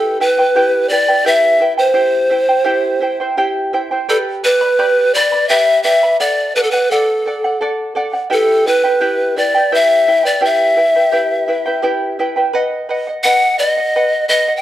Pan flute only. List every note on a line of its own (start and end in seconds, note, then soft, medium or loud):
0.00 0.17 A4 medium
0.21 0.90 B4 medium
0.89 1.28 D5 medium
1.27 1.73 E5 medium
1.79 3.16 C5 medium
4.09 4.17 A4 medium
4.44 5.16 B4 medium
5.14 5.48 D5 medium
5.49 5.82 E5 medium
5.83 6.17 E5 medium
6.20 6.53 D5 medium
6.56 6.65 B4 medium
6.63 6.72 A4 medium
6.71 6.92 B4 medium
6.91 7.61 A4 medium
8.33 8.68 A4 medium
8.67 9.37 B4 medium
9.37 9.76 D5 medium
9.74 10.27 E5 medium
10.26 10.43 D5 medium
10.45 11.81 E5 medium
13.23 13.56 F#5 loud
13.59 14.25 D#5 medium
14.29 14.55 D#5 medium
14.57 14.62 G5 medium